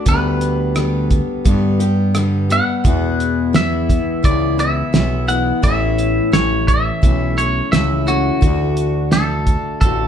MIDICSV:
0, 0, Header, 1, 5, 480
1, 0, Start_track
1, 0, Tempo, 696056
1, 43, Time_signature, 4, 2, 24, 8
1, 6949, End_track
2, 0, Start_track
2, 0, Title_t, "Clean electric guitar"
2, 0, Program_c, 0, 27
2, 59, Note_on_c, 0, 71, 72
2, 743, Note_off_c, 0, 71, 0
2, 1740, Note_on_c, 0, 78, 87
2, 2450, Note_off_c, 0, 78, 0
2, 2453, Note_on_c, 0, 76, 80
2, 2928, Note_off_c, 0, 76, 0
2, 2931, Note_on_c, 0, 74, 83
2, 3169, Note_off_c, 0, 74, 0
2, 3172, Note_on_c, 0, 76, 83
2, 3641, Note_off_c, 0, 76, 0
2, 3644, Note_on_c, 0, 78, 82
2, 3885, Note_off_c, 0, 78, 0
2, 3887, Note_on_c, 0, 76, 90
2, 4365, Note_off_c, 0, 76, 0
2, 4368, Note_on_c, 0, 73, 79
2, 4605, Note_off_c, 0, 73, 0
2, 4608, Note_on_c, 0, 76, 90
2, 5058, Note_off_c, 0, 76, 0
2, 5088, Note_on_c, 0, 73, 73
2, 5320, Note_off_c, 0, 73, 0
2, 5323, Note_on_c, 0, 76, 78
2, 5570, Note_off_c, 0, 76, 0
2, 5573, Note_on_c, 0, 66, 84
2, 6261, Note_off_c, 0, 66, 0
2, 6293, Note_on_c, 0, 69, 82
2, 6756, Note_off_c, 0, 69, 0
2, 6764, Note_on_c, 0, 69, 81
2, 6949, Note_off_c, 0, 69, 0
2, 6949, End_track
3, 0, Start_track
3, 0, Title_t, "Steel-string acoustic guitar"
3, 0, Program_c, 1, 25
3, 37, Note_on_c, 1, 50, 64
3, 42, Note_on_c, 1, 55, 70
3, 44, Note_on_c, 1, 59, 76
3, 49, Note_on_c, 1, 67, 77
3, 507, Note_off_c, 1, 50, 0
3, 511, Note_off_c, 1, 55, 0
3, 515, Note_on_c, 1, 50, 58
3, 520, Note_on_c, 1, 55, 57
3, 522, Note_off_c, 1, 67, 0
3, 523, Note_off_c, 1, 59, 0
3, 526, Note_on_c, 1, 59, 62
3, 531, Note_on_c, 1, 67, 61
3, 988, Note_off_c, 1, 50, 0
3, 995, Note_off_c, 1, 55, 0
3, 997, Note_on_c, 1, 50, 65
3, 1004, Note_on_c, 1, 55, 62
3, 1007, Note_off_c, 1, 67, 0
3, 1008, Note_off_c, 1, 59, 0
3, 1011, Note_on_c, 1, 59, 73
3, 1014, Note_on_c, 1, 67, 65
3, 1230, Note_off_c, 1, 67, 0
3, 1238, Note_on_c, 1, 67, 57
3, 1240, Note_off_c, 1, 50, 0
3, 1241, Note_off_c, 1, 59, 0
3, 1243, Note_off_c, 1, 55, 0
3, 1249, Note_on_c, 1, 59, 50
3, 1256, Note_on_c, 1, 55, 46
3, 1475, Note_off_c, 1, 55, 0
3, 1477, Note_on_c, 1, 50, 63
3, 1480, Note_off_c, 1, 67, 0
3, 1483, Note_off_c, 1, 59, 0
3, 1484, Note_on_c, 1, 55, 59
3, 1491, Note_on_c, 1, 59, 61
3, 1495, Note_on_c, 1, 67, 69
3, 1712, Note_off_c, 1, 67, 0
3, 1720, Note_off_c, 1, 50, 0
3, 1720, Note_off_c, 1, 59, 0
3, 1720, Note_on_c, 1, 67, 54
3, 1723, Note_off_c, 1, 55, 0
3, 1729, Note_on_c, 1, 59, 44
3, 1738, Note_on_c, 1, 55, 44
3, 1958, Note_off_c, 1, 59, 0
3, 1958, Note_on_c, 1, 40, 76
3, 1961, Note_off_c, 1, 67, 0
3, 1962, Note_off_c, 1, 55, 0
3, 1963, Note_on_c, 1, 47, 68
3, 1964, Note_on_c, 1, 52, 71
3, 1965, Note_on_c, 1, 56, 79
3, 1967, Note_on_c, 1, 59, 70
3, 1970, Note_on_c, 1, 64, 75
3, 2432, Note_off_c, 1, 52, 0
3, 2433, Note_off_c, 1, 56, 0
3, 2434, Note_on_c, 1, 52, 55
3, 2440, Note_off_c, 1, 40, 0
3, 2440, Note_off_c, 1, 59, 0
3, 2441, Note_on_c, 1, 56, 57
3, 2442, Note_off_c, 1, 47, 0
3, 2448, Note_on_c, 1, 59, 58
3, 2452, Note_off_c, 1, 64, 0
3, 2455, Note_on_c, 1, 64, 59
3, 2911, Note_off_c, 1, 56, 0
3, 2912, Note_off_c, 1, 52, 0
3, 2915, Note_on_c, 1, 52, 58
3, 2918, Note_off_c, 1, 59, 0
3, 2919, Note_on_c, 1, 56, 61
3, 2926, Note_on_c, 1, 59, 65
3, 2928, Note_off_c, 1, 64, 0
3, 2931, Note_on_c, 1, 64, 62
3, 3148, Note_off_c, 1, 64, 0
3, 3153, Note_off_c, 1, 59, 0
3, 3157, Note_on_c, 1, 64, 50
3, 3158, Note_off_c, 1, 52, 0
3, 3159, Note_off_c, 1, 56, 0
3, 3161, Note_on_c, 1, 59, 42
3, 3167, Note_on_c, 1, 56, 41
3, 3171, Note_on_c, 1, 52, 43
3, 3389, Note_off_c, 1, 52, 0
3, 3395, Note_off_c, 1, 56, 0
3, 3397, Note_on_c, 1, 52, 55
3, 3399, Note_off_c, 1, 64, 0
3, 3400, Note_off_c, 1, 59, 0
3, 3404, Note_on_c, 1, 56, 52
3, 3408, Note_on_c, 1, 59, 56
3, 3414, Note_on_c, 1, 64, 58
3, 3628, Note_off_c, 1, 64, 0
3, 3634, Note_off_c, 1, 59, 0
3, 3636, Note_on_c, 1, 64, 49
3, 3639, Note_off_c, 1, 56, 0
3, 3640, Note_off_c, 1, 52, 0
3, 3643, Note_on_c, 1, 59, 46
3, 3647, Note_on_c, 1, 56, 49
3, 3654, Note_on_c, 1, 52, 41
3, 3871, Note_off_c, 1, 52, 0
3, 3877, Note_on_c, 1, 45, 66
3, 3879, Note_off_c, 1, 64, 0
3, 3879, Note_on_c, 1, 52, 72
3, 3880, Note_off_c, 1, 56, 0
3, 3882, Note_off_c, 1, 59, 0
3, 3883, Note_on_c, 1, 57, 77
3, 3887, Note_on_c, 1, 61, 69
3, 3891, Note_on_c, 1, 64, 75
3, 4349, Note_off_c, 1, 52, 0
3, 4357, Note_on_c, 1, 52, 52
3, 4360, Note_off_c, 1, 45, 0
3, 4362, Note_off_c, 1, 61, 0
3, 4364, Note_off_c, 1, 57, 0
3, 4366, Note_on_c, 1, 57, 61
3, 4367, Note_off_c, 1, 64, 0
3, 4370, Note_on_c, 1, 61, 56
3, 4376, Note_on_c, 1, 64, 64
3, 4830, Note_off_c, 1, 52, 0
3, 4838, Note_on_c, 1, 52, 61
3, 4842, Note_off_c, 1, 61, 0
3, 4843, Note_off_c, 1, 57, 0
3, 4845, Note_on_c, 1, 57, 57
3, 4847, Note_off_c, 1, 64, 0
3, 4851, Note_on_c, 1, 61, 58
3, 4855, Note_on_c, 1, 64, 59
3, 5072, Note_off_c, 1, 64, 0
3, 5080, Note_on_c, 1, 64, 49
3, 5081, Note_off_c, 1, 52, 0
3, 5082, Note_off_c, 1, 61, 0
3, 5084, Note_off_c, 1, 57, 0
3, 5090, Note_on_c, 1, 61, 45
3, 5098, Note_on_c, 1, 57, 37
3, 5318, Note_off_c, 1, 57, 0
3, 5322, Note_off_c, 1, 64, 0
3, 5322, Note_on_c, 1, 52, 50
3, 5326, Note_on_c, 1, 57, 53
3, 5327, Note_off_c, 1, 61, 0
3, 5334, Note_on_c, 1, 61, 54
3, 5336, Note_on_c, 1, 64, 55
3, 5552, Note_off_c, 1, 64, 0
3, 5560, Note_on_c, 1, 64, 48
3, 5562, Note_off_c, 1, 61, 0
3, 5563, Note_off_c, 1, 52, 0
3, 5565, Note_off_c, 1, 57, 0
3, 5570, Note_on_c, 1, 61, 45
3, 5578, Note_on_c, 1, 57, 44
3, 5798, Note_off_c, 1, 57, 0
3, 5798, Note_on_c, 1, 50, 67
3, 5802, Note_off_c, 1, 64, 0
3, 5806, Note_on_c, 1, 57, 67
3, 5807, Note_off_c, 1, 61, 0
3, 5810, Note_on_c, 1, 62, 69
3, 5812, Note_on_c, 1, 66, 76
3, 6281, Note_off_c, 1, 50, 0
3, 6281, Note_off_c, 1, 57, 0
3, 6284, Note_on_c, 1, 50, 51
3, 6288, Note_off_c, 1, 66, 0
3, 6289, Note_on_c, 1, 57, 57
3, 6290, Note_off_c, 1, 62, 0
3, 6293, Note_on_c, 1, 62, 54
3, 6301, Note_on_c, 1, 66, 60
3, 6763, Note_off_c, 1, 50, 0
3, 6766, Note_on_c, 1, 50, 54
3, 6767, Note_off_c, 1, 57, 0
3, 6773, Note_off_c, 1, 66, 0
3, 6774, Note_off_c, 1, 62, 0
3, 6775, Note_on_c, 1, 57, 55
3, 6777, Note_on_c, 1, 62, 56
3, 6785, Note_on_c, 1, 66, 67
3, 6949, Note_off_c, 1, 50, 0
3, 6949, Note_off_c, 1, 57, 0
3, 6949, Note_off_c, 1, 62, 0
3, 6949, Note_off_c, 1, 66, 0
3, 6949, End_track
4, 0, Start_track
4, 0, Title_t, "FM bass"
4, 0, Program_c, 2, 39
4, 42, Note_on_c, 2, 38, 90
4, 835, Note_off_c, 2, 38, 0
4, 1002, Note_on_c, 2, 43, 80
4, 1795, Note_off_c, 2, 43, 0
4, 1964, Note_on_c, 2, 40, 89
4, 2756, Note_off_c, 2, 40, 0
4, 2926, Note_on_c, 2, 37, 81
4, 3332, Note_off_c, 2, 37, 0
4, 3405, Note_on_c, 2, 35, 86
4, 3812, Note_off_c, 2, 35, 0
4, 3885, Note_on_c, 2, 33, 90
4, 4281, Note_off_c, 2, 33, 0
4, 4364, Note_on_c, 2, 33, 85
4, 4772, Note_off_c, 2, 33, 0
4, 4848, Note_on_c, 2, 35, 84
4, 5254, Note_off_c, 2, 35, 0
4, 5327, Note_on_c, 2, 37, 83
4, 5733, Note_off_c, 2, 37, 0
4, 5809, Note_on_c, 2, 38, 91
4, 6601, Note_off_c, 2, 38, 0
4, 6769, Note_on_c, 2, 33, 82
4, 6949, Note_off_c, 2, 33, 0
4, 6949, End_track
5, 0, Start_track
5, 0, Title_t, "Drums"
5, 41, Note_on_c, 9, 42, 80
5, 44, Note_on_c, 9, 36, 94
5, 110, Note_off_c, 9, 42, 0
5, 113, Note_off_c, 9, 36, 0
5, 284, Note_on_c, 9, 42, 59
5, 353, Note_off_c, 9, 42, 0
5, 523, Note_on_c, 9, 37, 98
5, 523, Note_on_c, 9, 42, 76
5, 592, Note_off_c, 9, 37, 0
5, 592, Note_off_c, 9, 42, 0
5, 762, Note_on_c, 9, 42, 56
5, 764, Note_on_c, 9, 36, 67
5, 831, Note_off_c, 9, 42, 0
5, 833, Note_off_c, 9, 36, 0
5, 1003, Note_on_c, 9, 42, 74
5, 1004, Note_on_c, 9, 36, 95
5, 1072, Note_off_c, 9, 42, 0
5, 1073, Note_off_c, 9, 36, 0
5, 1243, Note_on_c, 9, 42, 58
5, 1312, Note_off_c, 9, 42, 0
5, 1481, Note_on_c, 9, 37, 98
5, 1481, Note_on_c, 9, 42, 76
5, 1550, Note_off_c, 9, 37, 0
5, 1550, Note_off_c, 9, 42, 0
5, 1726, Note_on_c, 9, 42, 57
5, 1795, Note_off_c, 9, 42, 0
5, 1964, Note_on_c, 9, 36, 100
5, 1964, Note_on_c, 9, 42, 71
5, 2033, Note_off_c, 9, 36, 0
5, 2033, Note_off_c, 9, 42, 0
5, 2208, Note_on_c, 9, 42, 58
5, 2277, Note_off_c, 9, 42, 0
5, 2444, Note_on_c, 9, 38, 96
5, 2444, Note_on_c, 9, 42, 72
5, 2513, Note_off_c, 9, 38, 0
5, 2513, Note_off_c, 9, 42, 0
5, 2686, Note_on_c, 9, 36, 68
5, 2689, Note_on_c, 9, 42, 55
5, 2754, Note_off_c, 9, 36, 0
5, 2758, Note_off_c, 9, 42, 0
5, 2925, Note_on_c, 9, 36, 94
5, 2926, Note_on_c, 9, 42, 68
5, 2994, Note_off_c, 9, 36, 0
5, 2995, Note_off_c, 9, 42, 0
5, 3166, Note_on_c, 9, 42, 53
5, 3235, Note_off_c, 9, 42, 0
5, 3405, Note_on_c, 9, 38, 103
5, 3405, Note_on_c, 9, 42, 74
5, 3474, Note_off_c, 9, 38, 0
5, 3474, Note_off_c, 9, 42, 0
5, 3647, Note_on_c, 9, 42, 59
5, 3716, Note_off_c, 9, 42, 0
5, 3885, Note_on_c, 9, 42, 69
5, 3886, Note_on_c, 9, 36, 99
5, 3954, Note_off_c, 9, 42, 0
5, 3955, Note_off_c, 9, 36, 0
5, 4127, Note_on_c, 9, 42, 60
5, 4196, Note_off_c, 9, 42, 0
5, 4368, Note_on_c, 9, 38, 99
5, 4368, Note_on_c, 9, 42, 76
5, 4437, Note_off_c, 9, 38, 0
5, 4437, Note_off_c, 9, 42, 0
5, 4607, Note_on_c, 9, 36, 70
5, 4608, Note_on_c, 9, 42, 55
5, 4676, Note_off_c, 9, 36, 0
5, 4677, Note_off_c, 9, 42, 0
5, 4848, Note_on_c, 9, 36, 93
5, 4851, Note_on_c, 9, 42, 73
5, 4917, Note_off_c, 9, 36, 0
5, 4920, Note_off_c, 9, 42, 0
5, 5092, Note_on_c, 9, 42, 61
5, 5161, Note_off_c, 9, 42, 0
5, 5330, Note_on_c, 9, 38, 98
5, 5330, Note_on_c, 9, 42, 81
5, 5398, Note_off_c, 9, 38, 0
5, 5398, Note_off_c, 9, 42, 0
5, 5570, Note_on_c, 9, 42, 57
5, 5639, Note_off_c, 9, 42, 0
5, 5808, Note_on_c, 9, 36, 92
5, 5809, Note_on_c, 9, 42, 76
5, 5877, Note_off_c, 9, 36, 0
5, 5878, Note_off_c, 9, 42, 0
5, 6046, Note_on_c, 9, 42, 58
5, 6115, Note_off_c, 9, 42, 0
5, 6287, Note_on_c, 9, 38, 100
5, 6287, Note_on_c, 9, 42, 74
5, 6356, Note_off_c, 9, 38, 0
5, 6356, Note_off_c, 9, 42, 0
5, 6528, Note_on_c, 9, 42, 55
5, 6529, Note_on_c, 9, 36, 71
5, 6597, Note_off_c, 9, 42, 0
5, 6598, Note_off_c, 9, 36, 0
5, 6767, Note_on_c, 9, 42, 71
5, 6769, Note_on_c, 9, 36, 91
5, 6836, Note_off_c, 9, 42, 0
5, 6838, Note_off_c, 9, 36, 0
5, 6949, End_track
0, 0, End_of_file